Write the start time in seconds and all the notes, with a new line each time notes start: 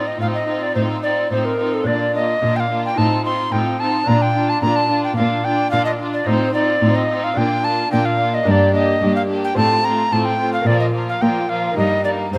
Already playing: A2 C4 D#4 F4
0.07 D#5
0.20 A2 C4 D#4 F4 F5
0.34 D#5
0.48 C4 D#4 F4
0.63 D5
0.75 A2 C4 D#4 F4 C5
1.03 C4 D#4 F4 D5
1.31 A2 C4 D#4 F4 C5
1.45 A#4
1.59 C4 D#4 F4
1.74 A4
1.83 A#2 D4 F4 D5
1.87 A#3 D4 F4
2.15 A#3 D4 F4 D#5
2.42 A#2 A#3 D4 F4
2.56 F5 G5
2.70 A#3 D4 F4
2.85 G5
2.94 A2 C4 D#4 F4 A5
2.98 F4
3.25 C4 D#4 F4 C6
3.52 A2 C4 D#4 F4 G5
3.80 C4 D#4 F4 A5
4.04 A#2 D4 F4 A#5
4.22 G5
4.35 D4 F4
4.49 A5
4.62 A#2 D4 F4 A#5
4.76 A5
4.89 D4 F4
5.04 G5
5.16 A#2 D4 F4 F5
5.44 D4 F4 G5
5.71 A#2 D4 F4 F5
5.85 D#5
6.00 D4 F4
6.14 D5
6.24 A2 C4 D#4 F4 C5
6.54 C4 D#4 F4 D5
6.81 A2 C4 D#4 F4
6.95 D#5
7.10 C4 D#4 F4
7.24 F5
7.34 A#2 A#3 D4 F4 G5
7.64 A#3 D4 F4 A5
7.91 A#2 A#3 D4 F4 G5
8.05 F5
8.19 A#3 D4 F4
8.34 D#5
8.43 G2 A#3 D4 G4 A#4 D#5
8.51 D5
8.74 A#3 D4 G4 D#5
9.01 G2 A#3 D4 G4
9.16 F5
9.28 A#3 D4 G4
9.44 G5
9.53 A2 A3 C4 F4 C5 A5
9.84 A3 C4 F4 A#5
10.11 A2 A3 C4 F4 A5
10.25 G5
10.39 A3 C4 F4
10.53 F5
10.61 A#3 F4 A#4
10.66 A#2 F3 A#3 F4 D5
10.80 D#5
10.94 F3 A#3 F4
11.09 F5
11.20 A#2 F3 A#3 F4 G5
11.49 F3 A#3 F4 F5
11.72 A#3 D#4 A#4
11.76 G2 G3 A#3 D#4 D#5
12.04 G3 A#3 D#4 D5
12.32 G2 G3 A#3 D#4 C5